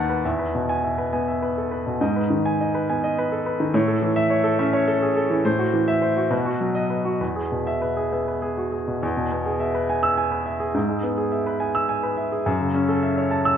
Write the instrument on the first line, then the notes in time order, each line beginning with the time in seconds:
grand piano
Already playing: D#2 D#3 B4 F#5 A5
0.10 B4
0.25 E2 E5
0.39 B4
0.55 B2
0.69 G#5
0.84 E5
0.98 B4
1.13 B3 G#5
1.28 E5
1.42 B4
1.58 A4
1.71 B4
1.87 B2
2.01 G#2 D#5
2.16 B4
2.30 D#3
2.46 G#5
2.61 D#5
2.75 B4
2.90 B3 G#5
3.04 D#5
3.19 B4
3.32 A4
3.46 B4
3.60 D#3
3.74 A2 C#5
3.88 A4
4.02 E3
4.16 E5
4.30 C#5
4.44 A4
4.59 C#4 E5
4.73 C#5
4.88 A4
5.02 G#4
5.17 A4
5.30 E3
5.45 A2 C5
5.59 F#4
5.74 E3
5.88 E5
6.02 C5
6.17 F#4
6.31 B2 B4
6.45 F#4
6.60 F#3
6.75 D#5
6.90 B4
7.05 F#4
7.21 E2 B4
7.36 G#4
7.52 B2
7.67 E5
7.82 B4
7.97 G#4
8.13 B3 E5
8.28 B4
8.42 G#4
8.57 F#4
8.72 G#4
8.88 B2
9.03 E2
9.17 B2
9.32 B3
9.46 G#4
9.60 E5
9.74 B4
9.90 G#5
10.03 E6
10.18 G#5
10.32 B4
10.46 E5
10.60 G#4
10.74 G#2
10.89 G#3
11.03 B3
11.18 G#4
11.32 E5
11.46 B4
11.60 G#5
11.75 E6
11.89 G#5
12.03 B4
12.17 E5
12.32 G#4
12.46 F#2
12.60 C#3
12.74 C#4
12.89 A4
13.03 E5
13.17 C#5
13.31 A5
13.45 E6